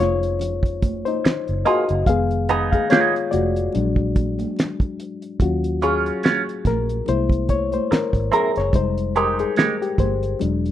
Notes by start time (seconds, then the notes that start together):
Already playing: F3 G#3 A#3 C#4 D#4 G#4 C5
0.00 F1 F4 C#5, snare
0.23 closed hi-hat
0.39 closed hi-hat, low conga
0.63 kick, closed hi-hat
0.82 kick, closed hi-hat, muted conga, high conga
1.05 D#4 C5, closed hi-hat, high conga
1.25 finger snap, muted clean electric guitar stroke, muted fingered electric bass stroke, snare, closed hi-hat
1.48 F#1, closed hi-hat
1.65 A#3 F4 F#4 G#4 D#5, closed hi-hat, muted conga
1.89 F#1, closed hi-hat
2.06 F1 D#3 G#3 B3 G#4 F5, kick, closed hi-hat
2.31 closed hi-hat
2.48 B3 D#4 G#4, closed hi-hat, muted conga
2.72 G#4 F5, kick, closed hi-hat, high conga
2.90 B3 D#4 F4 G#4 C#5, finger snap, snare, closed hi-hat, muted conga, high conga
3.16 closed hi-hat
3.31 F1 F#4 D5, closed hi-hat, muted conga, high conga, low conga
3.56 closed hi-hat
3.72 A#1 F#3 G#3 D4, closed hi-hat, low conga
3.96 kick
4.16 kick, closed hi-hat, high conga
4.39 closed hi-hat, high conga
4.56 finger snap, snare, closed hi-hat, muted conga
4.80 kick, closed hi-hat
5.00 closed hi-hat
5.22 closed hi-hat
5.40 D#2 F#3 C#4 F4 F#4, kick, closed hi-hat
5.64 closed hi-hat
5.81 F#3 C#4 F4 G#4, closed hi-hat, muted conga
6.06 closed hi-hat
6.23 F#3 C#4 F4, finger snap, snare, closed hi-hat, muted conga, high conga
6.49 closed hi-hat
6.65 A#1 A#4, kick, snare, closed hi-hat, muted conga, high conga, low conga
6.89 closed hi-hat
7.06 C2 G#3 A#3 E4 C5, closed hi-hat, muted conga, low conga
7.30 kick, closed hi-hat
7.48 C#5, kick, closed hi-hat, high conga
7.72 C5, closed hi-hat, high conga
7.91 A#4, finger snap, muted clean electric guitar stroke, muted fingered electric bass stroke, snare, closed hi-hat
8.13 G#1, kick, closed hi-hat
8.32 C4 E4 G#4 A#4, closed hi-hat, muted conga, low conga
8.56 F#1 C#5, snare, closed hi-hat
8.73 F1 G3 G#3 D#4 C5, kick, closed hi-hat
8.98 closed hi-hat
9.15 G#3 D#4 G4 A#4, closed hi-hat, muted conga
9.39 G#4, closed hi-hat
9.56 G#3 D#4 G4, finger snap, snare, closed hi-hat, muted conga, high conga
9.82 G4, closed hi-hat
9.98 G1 C5, kick, closed hi-hat, high conga, low conga
10.23 closed hi-hat
10.39 E1 F#3 G#3 D4, closed hi-hat, muted conga, low conga
10.66 closed hi-hat